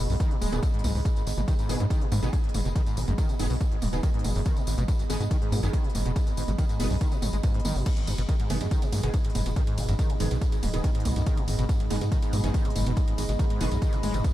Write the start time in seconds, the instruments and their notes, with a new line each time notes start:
Already playing: ambient pad B3 G#4 D#5 B5
0.10 analog synth bass B1, acid bass F#2, open hi-hat, tambourine
0.20 acid bass D#3, kick, closed hi-hat, ride, tambourine
0.31 acid bass B2, closed hi-hat
0.41 analog synth bass D#1, acid bass G#3, mid tom, open hi-hat, tambourine
0.52 analog synth bass D#1, acid bass G#2, synth stab D#3 B3 G#4, closed hi-hat, tambourine
0.63 acid bass G#2, kick, closed hi-hat, ride, tambourine
0.74 acid bass G#2, closed hi-hat
0.79 closed hi-hat
0.84 analog synth bass C#2, acid bass G#2, mid tom, open hi-hat, tambourine
0.95 analog synth bass C#2, acid bass G#2, open hi-hat, tambourine
1.05 acid bass G#2, kick, closed hi-hat, ride, tambourine
1.16 acid bass G#1, closed hi-hat, tambourine
1.27 analog synth bass G#1, acid bass G#2, open hi-hat, tambourine
1.37 analog synth bass G#1, acid bass B2, closed hi-hat, mid tom, tambourine
1.48 acid bass D#3, kick, closed hi-hat, ride, tambourine
1.59 acid bass G#2, closed hi-hat, tambourine
1.69 analog synth bass G#1, acid bass B2, synth stab D#3 B3 G#4, open hi-hat, tambourine
1.80 acid bass F#2, analog synth bass G#2, closed hi-hat, tambourine
1.90 acid bass D#3, kick, closed hi-hat, ride, tambourine
2.01 acid bass B2, closed hi-hat
2.12 acid bass G#1, analog synth bass G#2, mid tom, open hi-hat, tambourine
2.23 analog synth bass G#1, acid bass B2, synth stab D#3 B3 G#4, closed hi-hat, tambourine
2.33 acid bass G#2, kick, closed hi-hat, ride, tambourine
2.44 acid bass G#1, closed hi-hat
2.49 closed hi-hat
2.54 analog synth bass F#1, acid bass G#2, mid tom, open hi-hat, tambourine
2.65 analog synth bass F#1, acid bass B2, closed hi-hat, tambourine
2.76 acid bass D#3, kick, closed hi-hat, ride, tambourine
2.86 acid bass G#2, closed hi-hat, tambourine
2.97 analog synth bass G#1, acid bass B2, open hi-hat, tambourine
3.08 analog synth bass G#1, acid bass F#2, closed hi-hat, mid tom, tambourine
3.18 acid bass D#3, kick, closed hi-hat, ride, tambourine
3.29 acid bass B2, closed hi-hat, tambourine
3.39 analog synth bass F#1, acid bass G#1, synth stab D#3 B3 G#4, open hi-hat, tambourine
3.50 analog synth bass B1, acid bass B2, open hi-hat, tambourine
3.61 acid bass G#2, kick, closed hi-hat, ride, tambourine
3.72 acid bass G#1, closed hi-hat
3.82 analog synth bass D#1, acid bass G#2, mid tom, open hi-hat, tambourine
3.93 analog synth bass D#1, acid bass B2, synth stab D#3 B3 G#4, closed hi-hat, tambourine
4.03 acid bass D#3, kick, closed hi-hat, ride, tambourine
4.14 acid bass G#2, closed hi-hat
4.19 closed hi-hat
4.24 analog synth bass F#1, acid bass B2, mid tom, open hi-hat, tambourine
4.35 analog synth bass F#1, acid bass F#2, open hi-hat, tambourine
4.46 acid bass D#3, kick, closed hi-hat, ride, tambourine
4.57 acid bass B2, closed hi-hat, tambourine
4.67 analog synth bass G#1, acid bass G#1, open hi-hat, tambourine
4.78 analog synth bass G#1, acid bass B2, closed hi-hat, mid tom, tambourine
4.88 acid bass G#2, kick, closed hi-hat, ride, tambourine
4.99 acid bass G#1, closed hi-hat, tambourine
5.10 analog synth bass G#1, acid bass G#2, synth stab D#3 B3 G#4, open hi-hat, tambourine
5.20 analog synth bass G#2, acid bass B2, closed hi-hat, tambourine
5.31 acid bass D#3, kick, closed hi-hat, ride, tambourine
5.42 acid bass G#2, closed hi-hat
5.52 analog synth bass G#2, acid bass B2, mid tom, open hi-hat, tambourine
5.63 analog synth bass G#1, acid bass F#2, synth stab D#3 B3 G#4, closed hi-hat, tambourine
5.73 acid bass D#3, kick, closed hi-hat, ride, tambourine
5.84 acid bass B2, closed hi-hat
5.90 closed hi-hat
5.95 analog synth bass F#1, acid bass G#1, mid tom, open hi-hat, tambourine
6.05 analog synth bass F#1, acid bass B2, closed hi-hat, tambourine
6.16 acid bass G#2, kick, closed hi-hat, ride, tambourine
6.27 acid bass G#1, closed hi-hat, tambourine
6.37 analog synth bass G#1, acid bass G#2, open hi-hat, tambourine
6.48 analog synth bass G#1, acid bass B2, closed hi-hat, mid tom, tambourine
6.58 acid bass D#3, kick, closed hi-hat, ride, tambourine
6.69 acid bass G#2, closed hi-hat, tambourine
6.80 analog synth bass F#1, acid bass B2, synth stab D#3 B3 G#4, mid tom, open hi-hat, tambourine
6.90 analog synth bass B1, acid bass F#2, open hi-hat, tambourine
7.01 acid bass D#3, kick, closed hi-hat, ride, tambourine
7.12 acid bass B2, closed hi-hat, tambourine
7.22 analog synth bass G#1, acid bass A2, mid tom, open hi-hat, tambourine
7.33 analog synth bass G#1, acid bass G#3, closed hi-hat, tambourine
7.43 acid bass G#2, kick, closed hi-hat, ride, tambourine
7.54 acid bass G#2, closed hi-hat
7.60 closed hi-hat
7.65 analog synth bass G#1, acid bass D#3, mid tom, open hi-hat, tambourine
7.76 analog synth bass G#1, acid bass B2, open hi-hat, tambourine
7.86 synth drone G#2, acid bass G#2, ambient pad B3, kick, closed hi-hat, crash, ride, tambourine
7.93 acid bass G#1, ambient pad D#5, closed hi-hat, ride
8.07 analog synth bass G#1, acid bass G#2, ambient pad G#4, open hi-hat, ride, tambourine
8.18 analog synth bass G#1, acid bass B2, closed hi-hat, ride, tambourine
8.29 acid bass D#3, kick, closed hi-hat, ride, tambourine
8.40 acid bass G#2, closed hi-hat, ride
8.50 analog synth bass G#1, acid bass B2, synth stab D#3 B3 G#4, mid tom, open hi-hat, ride, tambourine
8.61 acid bass F#2, analog synth bass G#2, closed hi-hat, ride, tambourine
8.71 acid bass D#3, kick, closed hi-hat, ride, tambourine
8.82 acid bass B2, ambient pad B5, closed hi-hat, ride, tambourine
8.92 acid bass G#1, analog synth bass G#2, mid tom, open hi-hat, ride, tambourine
9.03 analog synth bass G#1, acid bass B2, synth stab D#3 B3 G#4, closed hi-hat, ride, tambourine
9.14 acid bass G#2, kick, closed hi-hat, ride, tambourine
9.25 acid bass G#1, closed hi-hat, ride
9.30 closed hi-hat
9.35 analog synth bass F#1, acid bass G#2, mid tom, open hi-hat, ride, tambourine
9.46 analog synth bass F#1, acid bass B2, closed hi-hat, ride, tambourine
9.56 acid bass D#3, kick, closed hi-hat, ride, tambourine
9.67 acid bass G#2, closed hi-hat, ride
9.78 analog synth bass G#1, acid bass B2, open hi-hat, ride, tambourine
9.89 analog synth bass G#1, acid bass F#2, closed hi-hat, ride, tambourine
9.99 acid bass D#3, kick, closed hi-hat, ride, tambourine
10.10 acid bass B2, closed hi-hat, ride
10.20 analog synth bass F#1, acid bass G#1, synth stab D#3 B3 G#4, mid tom, open hi-hat, ride, tambourine
10.31 analog synth bass B1, acid bass B2, closed hi-hat, ride, tambourine
10.41 acid bass G#2, kick, closed hi-hat, ride, tambourine
10.52 acid bass G#1, closed hi-hat, ride, tambourine
10.63 analog synth bass D#1, acid bass G#2, mid tom, open hi-hat, ride, tambourine
10.73 analog synth bass D#1, acid bass B2, synth stab D#3 B3 G#4, closed hi-hat, ride, tambourine
10.84 acid bass D#3, kick, closed hi-hat, ride, tambourine
10.95 acid bass G#2, closed hi-hat, ride
11.00 closed hi-hat
11.05 analog synth bass C#2, acid bass B2, mid tom, open hi-hat, ride, tambourine
11.16 analog synth bass C#2, acid bass F#2, closed hi-hat, ride, tambourine
11.26 acid bass D#3, kick, closed hi-hat, ride, tambourine
11.37 acid bass B2, closed hi-hat, ride
11.48 acid bass G#1, analog synth bass G#1, open hi-hat, ride, tambourine
11.59 analog synth bass G#1, acid bass B2, closed hi-hat, ride, tambourine
11.69 acid bass G#2, kick, closed hi-hat, ride, tambourine
11.80 acid bass G#1, closed hi-hat, ride
11.90 analog synth bass G#1, acid bass G#2, synth stab D#3 B3 G#4, mid tom, open hi-hat, ride, tambourine
12.01 analog synth bass G#2, acid bass B2, closed hi-hat, ride, tambourine
12.12 acid bass D#3, kick, closed hi-hat, ride, tambourine
12.22 acid bass G#2, closed hi-hat, ride, tambourine
12.33 analog synth bass G#2, acid bass B2, mid tom, open hi-hat, ride, tambourine
12.44 analog synth bass G#1, acid bass F#2, synth stab D#3 B3 G#4, closed hi-hat, ride, tambourine
12.54 acid bass D#3, kick, closed hi-hat, ride, tambourine
12.65 acid bass B2, closed hi-hat, ride
12.70 closed hi-hat
12.76 analog synth bass F#1, acid bass G#1, mid tom, open hi-hat, ride, tambourine
12.86 analog synth bass F#1, acid bass B2, closed hi-hat, ride, tambourine
12.97 acid bass G#2, kick, closed hi-hat, ride, tambourine
13.08 acid bass G#1, closed hi-hat, ride
13.18 analog synth bass G#1, acid bass G#2, open hi-hat, ride, tambourine
13.29 analog synth bass G#1, acid bass B2, closed hi-hat, ride, tambourine
13.39 acid bass D#3, kick, closed hi-hat, ride, tambourine
13.50 acid bass G#2, closed hi-hat, ride
13.61 analog synth bass F#1, acid bass B2, synth stab D#3 B3 G#4, mid tom, open hi-hat, ride, tambourine
13.71 analog synth bass B1, acid bass F#2, closed hi-hat, ride, tambourine
13.82 acid bass D#3, kick, closed hi-hat, ride, tambourine
13.93 acid bass B2, closed hi-hat, ride, tambourine
14.03 analog synth bass G#1, acid bass G#3, mid tom, open hi-hat, ride, tambourine
14.14 analog synth bass G#1, acid bass G#2, closed hi-hat, ride, tambourine
14.24 acid bass G#2, kick, closed hi-hat, ride, tambourine